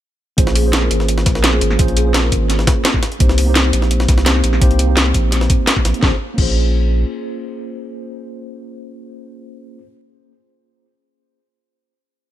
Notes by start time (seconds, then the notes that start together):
0.37 A#1 A#3 C#4 F4 G#4 C5, kick, closed hi-hat
0.47 snare
0.55 G#4, closed hi-hat, open hi-hat
0.62 A#3 C#4 F4
0.66 G#4 C5
0.73 snare, closed hi-hat
0.82 A#4, snare
0.91 G#1, closed hi-hat
1.00 snare
1.08 closed hi-hat
1.18 snare
1.26 A#1, kick, snare, closed hi-hat
1.35 A#4, snare
1.43 A#3 C#4 F4 G#4 C5, snare, closed hi-hat
1.53 G#4, snare
1.61 G#1, closed hi-hat
1.71 snare
1.78 A#1 A#3 C#4 F4 G#4 C5, kick, closed hi-hat
1.88 closed hi-hat
1.97 G#4, closed hi-hat
2.03 A#3 C#4 F4
2.07 G#4 C5
2.14 snare, closed hi-hat
2.23 A#4
2.32 G#1, kick, closed hi-hat
2.50 snare, closed hi-hat
2.59 snare
2.67 kick, snare, closed hi-hat
2.85 snare, closed hi-hat
2.94 kick, snare
3.03 snare, closed hi-hat
3.12 closed hi-hat
3.19 C2 A#3 C4 D#4 G4 C5, kick, closed hi-hat
3.29 snare
3.38 closed hi-hat, open hi-hat
3.45 A#3 C4 D#4
3.49 G4 C5
3.55 snare, closed hi-hat
3.65 snare
3.73 A#1, closed hi-hat
3.82 snare
3.91 closed hi-hat
4.00 snare
4.08 C2, kick, snare, closed hi-hat
4.18 snare
4.25 A#3 C4 D#4 G4 C5, snare, closed hi-hat
4.35 snare
4.44 A#1, closed hi-hat
4.53 snare
4.60 C2 A#3 C4 D#4 G4 C5, kick, closed hi-hat
4.71 closed hi-hat
4.79 closed hi-hat
4.86 A#3 C4 D#4 G4
4.91 C5
4.97 snare, closed hi-hat
5.06 snare
5.14 A#1, kick, closed hi-hat
5.32 snare, closed hi-hat
5.41 snare
5.50 kick, closed hi-hat
5.67 snare, closed hi-hat
5.76 kick, snare
5.85 A#1, snare, closed hi-hat
5.94 closed hi-hat
5.99 A#3 C#4, snare
6.03 A#1 F4 G#4 C5, kick
6.34 A#1 A#3 C#4, kick, crash
6.38 F4 G#4 C5